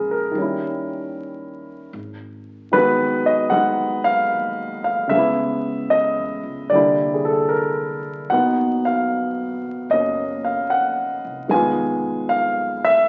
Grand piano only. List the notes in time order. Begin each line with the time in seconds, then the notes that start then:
Already playing: C#3 G#3 A#3 E4 G#4 A#4
0.11 A#4
0.31 D#3 G3
0.38 C#4 E4
2.72 D#3 G#3 B3 B4
2.76 F#4
3.26 D#5
3.50 G#3 F#5
3.54 D#4
4.04 F5
4.84 F5
5.07 C#3 G#3 E5
5.15 B3 E4
5.90 D#5
6.70 D3 G3 D5
6.74 A#3 E4
7.14 G#4
7.25 A4
7.49 A#4
8.30 B2 A#3 B3 D#4 F#5
8.85 F5
9.90 A#3 C#4 D#5
10.45 F5
10.70 F#5
11.48 D#3 G#3 B3 G#5
11.53 F4
12.29 F5
12.84 E5